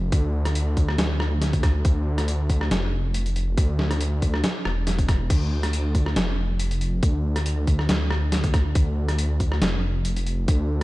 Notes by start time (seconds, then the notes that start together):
Already playing: F1
0.12 D2, kick, closed hi-hat
0.45 cross-stick, closed hi-hat
0.55 closed hi-hat
0.77 kick, closed hi-hat
0.89 cross-stick
0.98 D2, snare, closed hi-hat
1.20 cross-stick
1.42 snare, closed hi-hat
1.53 kick, closed hi-hat
1.63 kick, cross-stick, closed hi-hat
1.85 D2, kick, closed hi-hat
2.18 cross-stick, closed hi-hat
2.28 closed hi-hat
2.50 kick, closed hi-hat
2.61 cross-stick
2.71 F1, snare, closed hi-hat
3.14 closed hi-hat
3.26 closed hi-hat
3.36 closed hi-hat
3.57 D2, kick, closed hi-hat
3.79 snare
3.91 cross-stick, closed hi-hat
4.01 closed hi-hat
4.22 kick, closed hi-hat
4.34 cross-stick
4.44 snare, closed hi-hat
4.65 E1, cross-stick
4.87 snare, closed hi-hat
4.99 kick, closed hi-hat
5.08 kick, cross-stick, closed hi-hat
5.30 D2, kick, closed hi-hat, crash
5.63 cross-stick, closed hi-hat
5.73 closed hi-hat
5.95 kick, closed hi-hat
6.06 cross-stick
6.16 F1, snare, closed hi-hat
6.59 closed hi-hat
6.71 closed hi-hat
6.81 closed hi-hat
7.03 D2, kick, closed hi-hat
7.36 cross-stick, closed hi-hat
7.46 closed hi-hat
7.67 kick, closed hi-hat
7.79 cross-stick
7.89 D2, snare, closed hi-hat
8.11 cross-stick
8.32 snare, closed hi-hat
8.44 kick, closed hi-hat
8.54 kick, cross-stick, closed hi-hat
8.75 D2, kick, closed hi-hat
9.09 cross-stick, closed hi-hat
9.18 closed hi-hat
9.40 kick, closed hi-hat
9.52 cross-stick
9.62 F1, snare, closed hi-hat
10.05 closed hi-hat
10.16 closed hi-hat
10.27 closed hi-hat
10.48 D2, kick, closed hi-hat